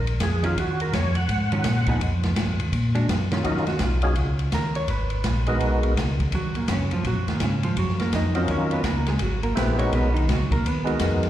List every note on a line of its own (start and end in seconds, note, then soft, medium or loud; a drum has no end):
0.00 0.20 A#1 medium
0.07 ride medium
0.20 0.56 F2 medium
0.20 0.44 G#4 medium
0.20 kick soft
0.20 snare medium
0.20 hi-hat pedal medium
0.20 ride medium
0.43 0.56 D#3 medium
0.43 0.56 F#3 medium
0.43 0.56 C#4 medium
0.43 0.56 F4 medium
0.43 0.58 F4 loud
0.43 ride medium
0.57 0.92 D#2 medium
0.57 0.81 F#4 medium
0.57 kick soft
0.57 ride medium
0.80 0.94 A#4 medium
0.80 ride medium
0.93 1.28 F2 loud
0.93 1.16 C#5 medium
0.93 kick soft
0.93 snare medium
0.93 hi-hat pedal medium
0.93 ride medium
1.15 1.97 F#5 loud
1.15 ride medium
1.29 1.64 G#2 loud
1.29 kick soft
1.29 ride medium
1.52 1.64 D#3 medium
1.52 1.64 F#3 medium
1.52 1.64 C#4 medium
1.52 1.65 F4 medium
1.52 ride soft
1.64 2.00 A#2 loud
1.64 kick soft
1.64 snare medium
1.64 hi-hat pedal medium
1.64 ride medium
1.86 2.00 F3 medium
1.86 2.00 B3 medium
1.86 2.00 D#4 medium
1.86 2.00 G#4 medium
1.86 kick medium
1.86 ride medium
2.00 2.36 F2 medium
2.00 kick soft
2.00 ride medium
2.23 snare medium
2.23 ride medium
2.36 2.48 G#2 loud
2.36 kick soft
2.36 snare medium
2.36 hi-hat pedal medium
2.36 ride medium
2.47 2.60 F2 medium
2.59 2.71 D#2 medium
2.59 ride medium
2.72 3.07 A#2 medium
2.72 kick soft
2.72 ride medium
2.95 3.07 G#3 medium
2.95 3.07 D4 medium
2.95 3.08 F#4 medium
2.95 ride medium
3.09 3.44 F#2 loud
3.09 kick soft
3.09 snare medium
3.09 hi-hat pedal medium
3.09 ride medium
3.32 3.43 D#3 medium
3.32 3.44 F#3 medium
3.32 3.44 C#4 medium
3.32 3.44 F4 medium
3.32 snare medium
3.32 ride medium
3.44 3.80 D#2 medium
3.44 3.65 F#3 medium
3.44 3.65 C#4 medium
3.44 3.65 D#4 medium
3.44 3.68 D#4 medium
3.44 3.66 F4 medium
3.44 3.66 A#4 medium
3.44 kick soft
3.44 ride medium
3.57 snare soft
3.67 3.81 F#4 medium
3.67 snare soft
3.67 ride soft
3.79 4.15 B1 medium
3.79 4.36 F4 medium
3.79 kick soft
3.79 snare medium
3.79 hi-hat pedal medium
3.79 ride medium
4.02 4.15 F#3 medium
4.02 4.15 C#4 medium
4.02 4.15 D#4 medium
4.02 4.15 F4 medium
4.02 4.16 G#4 medium
4.02 ride soft
4.15 4.51 C#2 medium
4.15 kick soft
4.15 ride medium
4.39 ride soft
4.52 4.87 D#2 medium
4.52 4.75 A#4 medium
4.52 kick soft
4.52 snare medium
4.52 hi-hat pedal medium
4.52 ride medium
4.75 4.89 C#5 loud
4.75 ride medium
4.88 5.23 G#1 medium
4.88 5.44 B4 medium
4.88 kick soft
4.88 ride medium
5.10 ride soft
5.24 5.59 A#1 medium
5.24 kick soft
5.24 snare medium
5.24 hi-hat pedal medium
5.24 ride medium
5.47 5.94 G#3 medium
5.47 5.94 B3 medium
5.47 5.94 D#4 medium
5.47 5.95 F#4 medium
5.47 5.95 A#4 medium
5.47 ride soft
5.60 5.95 B1 medium
5.60 kick soft
5.60 ride medium
5.83 ride soft
5.97 6.31 C#2 medium
5.97 kick soft
5.97 snare medium
5.97 hi-hat pedal medium
5.97 ride medium
6.20 kick medium
6.20 ride medium
6.32 6.54 D#2 medium
6.32 6.56 F#3 medium
6.32 6.56 F#4 medium
6.32 kick soft
6.32 ride medium
6.55 6.62 D#2 soft
6.55 6.69 A#2 soft
6.55 6.69 A#3 medium
6.55 ride soft
6.68 7.04 F#2 medium
6.68 6.92 C#3 medium
6.68 6.92 C#4 medium
6.68 kick soft
6.68 snare medium
6.68 hi-hat pedal medium
6.68 ride medium
6.91 7.05 F3 medium
6.91 7.05 F4 medium
6.91 ride soft
7.05 7.16 A#2 medium
7.05 7.28 F#3 medium
7.05 7.28 F#4 loud
7.05 kick soft
7.05 ride medium
7.16 7.28 F#2 medium
7.27 7.39 D#2 medium
7.27 7.41 A#2 soft
7.27 7.41 A#3 soft
7.27 snare medium
7.27 ride soft
7.40 7.75 G#2 medium
7.40 7.64 C#3 medium
7.40 7.64 C#4 medium
7.40 kick soft
7.40 snare medium
7.40 hi-hat pedal medium
7.40 ride medium
7.63 7.77 F3 medium
7.63 7.77 F4 medium
7.63 ride medium
7.77 8.11 F#2 medium
7.77 8.00 F#3 medium
7.77 8.00 F#4 medium
7.77 kick soft
7.77 ride medium
7.88 snare soft
8.00 8.12 A#3 medium
8.00 8.12 A#4 medium
8.00 snare soft
8.00 ride soft
8.12 8.47 F2 medium
8.12 8.36 D#4 medium
8.12 8.36 D#5 medium
8.12 kick soft
8.12 snare medium
8.12 hi-hat pedal medium
8.12 ride medium
8.35 8.82 F#3 medium
8.35 8.49 C4 medium
8.35 8.82 C#4 medium
8.35 8.82 D#4 medium
8.35 8.82 F4 medium
8.35 8.82 A#4 medium
8.35 8.49 C5 medium
8.35 ride soft
8.48 8.83 D#2 medium
8.48 8.72 C#4 medium
8.48 8.72 C#5 loud
8.48 kick soft
8.48 ride medium
8.71 8.85 B3 medium
8.71 8.85 B4 medium
8.71 ride soft
8.84 9.19 C#2 medium
8.84 9.08 A#3 medium
8.84 9.07 A#4 medium
8.84 kick soft
8.84 snare medium
8.84 hi-hat pedal medium
8.84 ride medium
9.06 9.21 G#3 medium
9.06 9.21 G#4 medium
9.06 snare soft
9.06 ride medium
9.19 9.55 G#1 medium
9.19 9.44 F#3 medium
9.19 9.43 F#4 medium
9.19 kick soft
9.19 ride medium
9.43 9.56 A#3 medium
9.43 9.56 A#4 medium
9.43 ride soft
9.55 9.91 A#1 medium
9.55 9.76 A3 medium
9.55 9.79 B3 medium
9.55 9.76 C4 medium
9.55 9.76 E4 medium
9.55 9.77 G4 medium
9.55 9.77 B4 medium
9.55 9.78 B4 medium
9.55 kick soft
9.55 snare medium
9.55 hi-hat pedal medium
9.55 ride medium
9.77 10.09 G#3 medium
9.77 10.10 B3 medium
9.77 9.92 C#4 medium
9.77 10.10 D#4 medium
9.77 10.10 F#4 medium
9.77 10.10 A#4 medium
9.77 9.92 C#5 loud
9.77 ride medium
9.92 10.27 B1 medium
9.92 10.15 B3 medium
9.92 10.15 B4 medium
9.92 kick soft
9.92 ride medium
10.14 10.28 D#3 medium
10.14 10.27 D#4 medium
10.14 ride medium
10.29 10.49 C#2 medium
10.29 10.52 F#3 medium
10.29 10.51 F#4 medium
10.29 kick soft
10.29 snare medium
10.29 hi-hat pedal medium
10.29 ride medium
10.51 10.57 C#2 soft
10.51 10.65 A#3 medium
10.51 10.64 A#4 medium
10.51 kick medium
10.51 ride medium
10.64 10.99 D#2 medium
10.64 10.99 B3 medium
10.64 10.99 B4 medium
10.64 kick soft
10.64 ride medium
10.84 11.30 G#3 medium
10.84 11.30 B3 medium
10.84 11.30 D#4 medium
10.84 11.30 F#4 medium
10.84 11.30 A#4 medium
10.84 ride soft
10.99 11.30 F2 medium
10.99 kick soft
10.99 snare medium
10.99 hi-hat pedal medium
10.99 ride medium
11.23 snare soft
11.23 ride medium